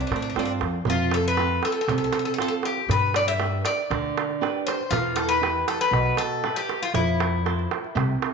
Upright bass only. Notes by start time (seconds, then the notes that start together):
0.10 A2
0.36 G2
0.61 F2
0.87 F2
1.88 C2
2.89 G2
3.90 D2
4.91 E2
5.91 B1
6.94 F2
7.95 C2